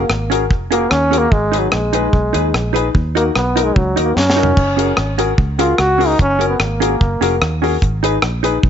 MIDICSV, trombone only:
0, 0, Header, 1, 2, 480
1, 0, Start_track
1, 0, Key_signature, 6, "major"
1, 0, Tempo, 406504
1, 1559, Time_signature, 4, 2, 24, 8
1, 10271, End_track
2, 0, Start_track
2, 0, Title_t, "Trombone"
2, 0, Program_c, 0, 57
2, 0, Note_on_c, 0, 58, 87
2, 382, Note_off_c, 0, 58, 0
2, 841, Note_on_c, 0, 58, 98
2, 1067, Note_on_c, 0, 61, 108
2, 1085, Note_off_c, 0, 58, 0
2, 1395, Note_on_c, 0, 58, 104
2, 1413, Note_off_c, 0, 61, 0
2, 1559, Note_on_c, 0, 56, 102
2, 1577, Note_off_c, 0, 58, 0
2, 1876, Note_on_c, 0, 54, 85
2, 1893, Note_off_c, 0, 56, 0
2, 2037, Note_on_c, 0, 56, 86
2, 2055, Note_off_c, 0, 54, 0
2, 3250, Note_off_c, 0, 56, 0
2, 3743, Note_on_c, 0, 58, 83
2, 3842, Note_off_c, 0, 58, 0
2, 3969, Note_on_c, 0, 59, 89
2, 4292, Note_on_c, 0, 56, 92
2, 4310, Note_off_c, 0, 59, 0
2, 4445, Note_on_c, 0, 54, 92
2, 4463, Note_off_c, 0, 56, 0
2, 4747, Note_off_c, 0, 54, 0
2, 4754, Note_on_c, 0, 58, 85
2, 4908, Note_on_c, 0, 61, 98
2, 4926, Note_off_c, 0, 58, 0
2, 6126, Note_off_c, 0, 61, 0
2, 6611, Note_on_c, 0, 65, 101
2, 6842, Note_on_c, 0, 66, 113
2, 6860, Note_off_c, 0, 65, 0
2, 7169, Note_on_c, 0, 63, 105
2, 7186, Note_off_c, 0, 66, 0
2, 7324, Note_off_c, 0, 63, 0
2, 7337, Note_on_c, 0, 61, 111
2, 7626, Note_off_c, 0, 61, 0
2, 7665, Note_on_c, 0, 59, 76
2, 7798, Note_off_c, 0, 59, 0
2, 7805, Note_on_c, 0, 58, 81
2, 8967, Note_off_c, 0, 58, 0
2, 10271, End_track
0, 0, End_of_file